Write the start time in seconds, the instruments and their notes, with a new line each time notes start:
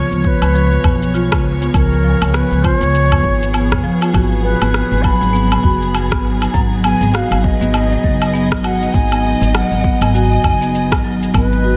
Already playing: string section F3 B3 C#5, bansuri C#5
0.11 upright bass C#2, marimba B3, shaker
0.24 bansuri B4 C#5, kick
0.41 upright bass C#2, low woodblock, shaker
0.54 marimba F3, shaker
0.72 string section G#4, shaker
0.84 upright bass B1, marimba B3, kick, udu, low woodblock
1.03 shaker
1.14 marimba F4, shaker
1.32 upright bass C#2, kick, cross-stick, low woodblock, shaker
1.62 marimba B3, shaker
1.74 upright bass C#2, bansuri A#4, kick, low woodblock, shaker
1.93 shaker
2.04 marimba F3
2.21 upright bass C#2, low woodblock, shaker
2.34 marimba B3, bansuri B4, cross-stick, shaker
2.51 upright bass C#2, shaker
2.64 marimba F4, bansuri C5, kick, low woodblock
2.79 upright bass C#2, bansuri C#5, shaker
2.95 shaker
3.12 marimba B3, udu, low woodblock, shaker
3.24 upright bass G#1, kick
3.43 shaker
3.54 marimba B3, low woodblock, shaker
3.71 upright bass C#2, kick, cross-stick, udu, shaker
3.84 marimba F3
4.01 marimba F4, low woodblock, shaker
4.14 upright bass G#1, string section F#3, marimba F#4, kick, low woodblock, shaker
4.32 shaker
4.44 bansuri B4
4.61 upright bass G#1, marimba B3, low woodblock, shaker
4.74 cross-stick, shaker
4.91 upright bass G#1, shaker
5.03 marimba F#3, bansuri B5, kick, low woodblock
5.21 upright bass G#1, shaker
5.33 marimba B3, shaker
5.47 string section D#4
5.52 low woodblock, shaker
5.63 upright bass F#1, marimba F#4, kick, udu
5.82 shaker
5.95 low woodblock, shaker
6.11 upright bass G#1, marimba B3, kick, cross-stick, shaker
6.42 low woodblock, shaker
6.53 upright bass G#1, marimba F#3, bansuri A#5, kick, shaker
6.72 shaker
6.81 marimba B3, string section D#5, bansuri G#5, low woodblock
7.01 upright bass G#1, shaker
7.14 marimba F#4, bansuri F5, cross-stick, shaker
7.31 upright bass G#1, low woodblock, shaker
7.44 bansuri D#5, kick
7.61 upright bass G#1, marimba B3, shaker
7.74 low woodblock, shaker
7.92 shaker
8.04 upright bass F#1, marimba F#3, kick
8.22 low woodblock, shaker
8.34 marimba B3, shaker
8.51 upright bass G#1, kick, cross-stick, shaker
8.64 marimba F#4, bansuri F#5, low woodblock
8.82 shaker
8.94 upright bass G#1, bansuri G#5, kick, shaker
9.12 marimba B3, low woodblock, shaker
9.41 upright bass G#1, shaker
9.54 marimba F#3, bansuri F#5, cross-stick, low woodblock, shaker
9.71 upright bass G#1, shaker
9.84 marimba B3, kick
10.01 upright bass G#1, bansuri G#5, low woodblock, shaker
10.14 marimba F#4, bansuri G#5, shaker
10.33 shaker
10.44 upright bass F#1, kick, udu, low woodblock
10.62 marimba B3, shaker
10.75 shaker
10.92 upright bass G#1, kick, cross-stick, low woodblock, shaker
11.04 marimba F#3
11.22 shaker
11.34 upright bass G#1, marimba B3, bansuri B4, kick, low woodblock, shaker
11.53 shaker
11.64 marimba F#4